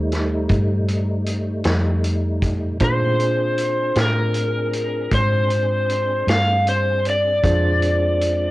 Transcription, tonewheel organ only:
0, 0, Header, 1, 2, 480
1, 0, Start_track
1, 0, Tempo, 770218
1, 1754, Time_signature, 12, 3, 24, 8
1, 5302, End_track
2, 0, Start_track
2, 0, Title_t, "Tonewheel organ"
2, 0, Program_c, 0, 16
2, 0, Note_on_c, 0, 55, 64
2, 0, Note_on_c, 0, 57, 61
2, 0, Note_on_c, 0, 63, 63
2, 1729, Note_off_c, 0, 57, 0
2, 1730, Note_off_c, 0, 55, 0
2, 1732, Note_off_c, 0, 63, 0
2, 1753, Note_on_c, 0, 60, 52
2, 1754, Note_on_c, 0, 51, 56
2, 1755, Note_on_c, 0, 57, 53
2, 1973, Note_off_c, 0, 60, 0
2, 1980, Note_on_c, 0, 60, 55
2, 1980, Note_on_c, 0, 62, 61
2, 1983, Note_on_c, 0, 68, 55
2, 1994, Note_off_c, 0, 51, 0
2, 1994, Note_off_c, 0, 57, 0
2, 4606, Note_off_c, 0, 60, 0
2, 4606, Note_off_c, 0, 62, 0
2, 4607, Note_off_c, 0, 68, 0
2, 4625, Note_on_c, 0, 60, 63
2, 4626, Note_on_c, 0, 56, 59
2, 4629, Note_on_c, 0, 62, 61
2, 5302, Note_off_c, 0, 56, 0
2, 5302, Note_off_c, 0, 60, 0
2, 5302, Note_off_c, 0, 62, 0
2, 5302, End_track
0, 0, End_of_file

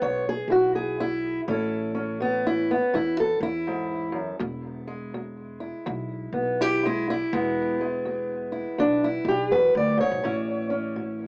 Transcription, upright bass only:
0, 0, Header, 1, 2, 480
1, 0, Start_track
1, 0, Tempo, 730371
1, 977, Time_signature, 4, 2, 24, 8
1, 7407, End_track
2, 0, Start_track
2, 0, Title_t, "Upright bass"
2, 0, Program_c, 0, 32
2, 10, Note_on_c, 0, 35, 82
2, 285, Note_off_c, 0, 35, 0
2, 312, Note_on_c, 0, 35, 73
2, 903, Note_off_c, 0, 35, 0
2, 971, Note_on_c, 0, 33, 94
2, 1832, Note_off_c, 0, 33, 0
2, 1934, Note_on_c, 0, 40, 80
2, 2208, Note_off_c, 0, 40, 0
2, 2238, Note_on_c, 0, 40, 77
2, 2826, Note_off_c, 0, 40, 0
2, 2893, Note_on_c, 0, 28, 92
2, 3754, Note_off_c, 0, 28, 0
2, 3857, Note_on_c, 0, 35, 85
2, 4129, Note_off_c, 0, 35, 0
2, 4158, Note_on_c, 0, 35, 83
2, 4747, Note_off_c, 0, 35, 0
2, 4816, Note_on_c, 0, 28, 100
2, 5676, Note_off_c, 0, 28, 0
2, 5774, Note_on_c, 0, 35, 73
2, 6048, Note_off_c, 0, 35, 0
2, 6077, Note_on_c, 0, 35, 90
2, 6237, Note_off_c, 0, 35, 0
2, 6254, Note_on_c, 0, 40, 80
2, 6393, Note_off_c, 0, 40, 0
2, 6408, Note_on_c, 0, 38, 88
2, 6546, Note_off_c, 0, 38, 0
2, 6558, Note_on_c, 0, 37, 76
2, 6639, Note_off_c, 0, 37, 0
2, 6648, Note_on_c, 0, 35, 81
2, 6728, Note_off_c, 0, 35, 0
2, 6734, Note_on_c, 0, 33, 87
2, 7407, Note_off_c, 0, 33, 0
2, 7407, End_track
0, 0, End_of_file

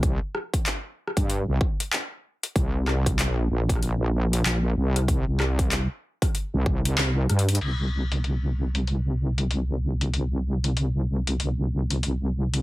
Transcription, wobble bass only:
0, 0, Header, 1, 2, 480
1, 0, Start_track
1, 0, Tempo, 631579
1, 24, Time_signature, 4, 2, 24, 8
1, 9593, End_track
2, 0, Start_track
2, 0, Title_t, "Wobble bass"
2, 0, Program_c, 0, 39
2, 0, Note_on_c, 0, 36, 96
2, 144, Note_off_c, 0, 36, 0
2, 888, Note_on_c, 0, 43, 95
2, 1105, Note_off_c, 0, 43, 0
2, 1125, Note_on_c, 0, 36, 96
2, 1207, Note_off_c, 0, 36, 0
2, 1943, Note_on_c, 0, 36, 95
2, 2437, Note_off_c, 0, 36, 0
2, 2437, Note_on_c, 0, 35, 95
2, 2648, Note_off_c, 0, 35, 0
2, 2665, Note_on_c, 0, 34, 96
2, 3369, Note_off_c, 0, 34, 0
2, 3384, Note_on_c, 0, 34, 94
2, 3609, Note_off_c, 0, 34, 0
2, 3624, Note_on_c, 0, 36, 96
2, 3986, Note_off_c, 0, 36, 0
2, 4007, Note_on_c, 0, 36, 95
2, 4465, Note_off_c, 0, 36, 0
2, 4969, Note_on_c, 0, 36, 100
2, 5289, Note_off_c, 0, 36, 0
2, 5302, Note_on_c, 0, 36, 92
2, 5528, Note_off_c, 0, 36, 0
2, 5545, Note_on_c, 0, 43, 98
2, 5769, Note_off_c, 0, 43, 0
2, 5783, Note_on_c, 0, 36, 84
2, 9593, Note_off_c, 0, 36, 0
2, 9593, End_track
0, 0, End_of_file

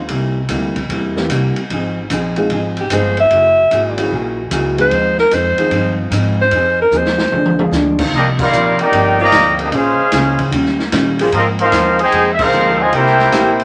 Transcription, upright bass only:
0, 0, Header, 1, 3, 480
1, 0, Start_track
1, 0, Tempo, 401070
1, 110, Time_signature, 4, 2, 24, 8
1, 16326, End_track
2, 0, Start_track
2, 0, Title_t, "Upright bass"
2, 0, Program_c, 0, 32
2, 102, Note_on_c, 0, 36, 80
2, 574, Note_off_c, 0, 36, 0
2, 586, Note_on_c, 0, 38, 96
2, 1057, Note_off_c, 0, 38, 0
2, 1067, Note_on_c, 0, 40, 94
2, 1538, Note_off_c, 0, 40, 0
2, 1546, Note_on_c, 0, 36, 96
2, 1849, Note_off_c, 0, 36, 0
2, 2033, Note_on_c, 0, 32, 82
2, 2503, Note_off_c, 0, 32, 0
2, 2515, Note_on_c, 0, 34, 92
2, 2979, Note_off_c, 0, 34, 0
2, 2987, Note_on_c, 0, 32, 92
2, 3461, Note_off_c, 0, 32, 0
2, 3473, Note_on_c, 0, 31, 98
2, 3944, Note_off_c, 0, 31, 0
2, 3957, Note_on_c, 0, 30, 92
2, 4427, Note_off_c, 0, 30, 0
2, 4439, Note_on_c, 0, 32, 91
2, 4908, Note_off_c, 0, 32, 0
2, 4919, Note_on_c, 0, 34, 101
2, 5388, Note_off_c, 0, 34, 0
2, 5400, Note_on_c, 0, 37, 105
2, 5869, Note_off_c, 0, 37, 0
2, 5877, Note_on_c, 0, 39, 84
2, 6348, Note_off_c, 0, 39, 0
2, 6355, Note_on_c, 0, 41, 96
2, 6658, Note_off_c, 0, 41, 0
2, 6827, Note_on_c, 0, 43, 98
2, 7303, Note_off_c, 0, 43, 0
2, 7310, Note_on_c, 0, 44, 100
2, 7784, Note_off_c, 0, 44, 0
2, 7795, Note_on_c, 0, 41, 90
2, 8266, Note_off_c, 0, 41, 0
2, 8271, Note_on_c, 0, 39, 101
2, 8745, Note_off_c, 0, 39, 0
2, 8758, Note_on_c, 0, 38, 95
2, 9223, Note_off_c, 0, 38, 0
2, 9230, Note_on_c, 0, 38, 103
2, 9703, Note_off_c, 0, 38, 0
2, 9715, Note_on_c, 0, 36, 88
2, 10182, Note_off_c, 0, 36, 0
2, 10189, Note_on_c, 0, 34, 93
2, 10494, Note_off_c, 0, 34, 0
2, 10674, Note_on_c, 0, 31, 98
2, 11144, Note_off_c, 0, 31, 0
2, 11153, Note_on_c, 0, 38, 99
2, 11623, Note_off_c, 0, 38, 0
2, 11628, Note_on_c, 0, 34, 92
2, 11932, Note_off_c, 0, 34, 0
2, 12109, Note_on_c, 0, 37, 96
2, 12580, Note_off_c, 0, 37, 0
2, 12591, Note_on_c, 0, 39, 96
2, 13060, Note_off_c, 0, 39, 0
2, 13072, Note_on_c, 0, 46, 99
2, 13540, Note_off_c, 0, 46, 0
2, 13550, Note_on_c, 0, 44, 92
2, 14014, Note_off_c, 0, 44, 0
2, 14021, Note_on_c, 0, 39, 101
2, 14493, Note_off_c, 0, 39, 0
2, 14504, Note_on_c, 0, 41, 101
2, 14975, Note_off_c, 0, 41, 0
2, 14984, Note_on_c, 0, 38, 101
2, 15454, Note_off_c, 0, 38, 0
2, 15467, Note_on_c, 0, 36, 94
2, 15935, Note_off_c, 0, 36, 0
2, 15946, Note_on_c, 0, 34, 94
2, 16326, Note_off_c, 0, 34, 0
2, 16326, End_track
3, 0, Start_track
3, 0, Title_t, "Muted upright bass strokes"
3, 6674, Note_on_c, 9, 29, 43
3, 6794, Note_off_c, 9, 29, 0
3, 10515, Note_on_c, 9, 29, 42
3, 10634, Note_off_c, 9, 29, 0
3, 11956, Note_on_c, 9, 29, 43
3, 12076, Note_off_c, 9, 29, 0
3, 16326, End_track
0, 0, End_of_file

